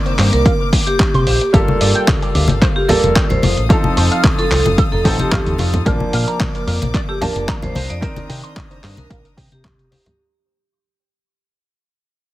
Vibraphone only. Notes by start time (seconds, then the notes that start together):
0.33 A#4
0.87 G4
2.76 G4
2.88 A#4
3.29 C5
3.42 C5
4.38 A4
4.51 A4
4.92 A4
5.20 G4
5.32 G4
7.09 G4
7.22 A#4
7.63 C5
7.76 C5
7.90 D5
8.03 D5
8.98 A#4
9.52 G4